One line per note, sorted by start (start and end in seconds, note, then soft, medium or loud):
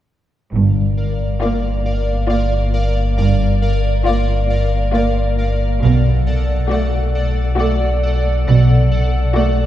0.52 5.84 G1 medium
0.52 1.24 G1 soft
0.52 1.24 G2 soft
0.52 5.79 A#4 soft
0.52 5.79 D5 soft
0.52 5.80 F5 soft
1.42 2.08 A#3 soft
1.42 2.08 F4 soft
1.42 2.08 D5 soft
2.29 2.97 A#3 soft
2.29 2.96 F4 soft
2.29 2.96 D5 soft
3.18 3.89 G1 soft
3.18 3.89 G2 soft
4.05 4.73 A#3 soft
4.05 4.72 F4 soft
4.05 4.74 D5 soft
4.94 5.61 A#3 soft
4.94 5.61 F4 soft
4.94 5.61 D5 soft
5.82 9.66 B1 medium
5.82 6.54 B1 soft
5.82 6.54 B2 soft
5.82 9.66 A4 soft
5.82 9.66 D5 soft
5.82 9.66 F#5 medium
6.70 7.37 A3 soft
6.70 7.37 F#4 soft
6.70 7.37 D5 soft
7.59 8.26 A3 soft
7.59 8.25 F#4 soft
7.59 8.26 D5 soft
8.47 9.18 B1 soft
8.47 9.18 B2 soft
9.35 9.66 A3 soft
9.35 9.66 F#4 soft
9.35 9.66 D5 soft